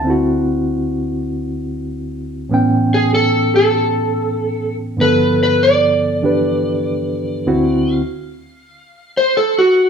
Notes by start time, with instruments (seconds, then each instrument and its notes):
Already playing: reed electric piano A5
0.00 reed electric piano D2 D3
0.04 reed electric piano C4 E4
0.10 reed electric piano F#4
2.49 reed electric piano A2 E3 B3 C#4
2.54 reed electric piano G5
2.94 electric slide guitar G#4
3.15 electric slide guitar A4
3.56 electric slide guitar A4
4.97 reed electric piano G2 D3 F3 B3
5.01 reed electric piano A4, electric slide guitar B4
5.43 electric slide guitar B4
5.63 electric slide guitar D5
6.22 reed electric piano E3 D4 G4 B4
7.46 reed electric piano D2 D3 C4 E4 F#4
7.92 electric slide guitar F5
9.17 electric slide guitar C5
9.37 electric slide guitar A4
9.59 electric slide guitar F#4